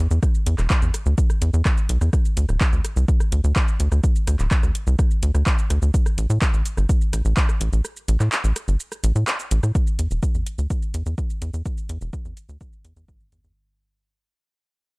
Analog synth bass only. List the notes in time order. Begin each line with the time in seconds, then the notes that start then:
0.11 E2
0.46 E2
0.58 E1
0.82 E2
1.06 D2
1.42 E2
1.54 E2
1.89 B1
2.01 E2
2.37 D2
2.49 D1
2.73 D2
2.96 C2
3.32 D2
3.44 D2
3.80 D2
3.92 D2
4.27 D2
4.39 D1
4.63 D2
4.87 C2
5.23 D2
5.35 D2
5.70 D2
5.82 D2
6.18 A1
6.30 A2
6.54 A1
6.77 G1
7.13 A1
7.25 A1
7.61 A1
7.73 A1
8.08 A1
8.20 A2
8.44 A1
8.68 G1
9.04 A1
9.16 A2
9.51 A1
9.63 A2
9.99 E2
10.11 E1
10.35 E2
10.58 D2
10.94 E2
11.06 E2
11.42 E2
11.54 E2
11.89 E2
12.01 E1
12.25 E2
12.49 D2
12.85 E2
12.96 E2
13.32 E2
13.44 E2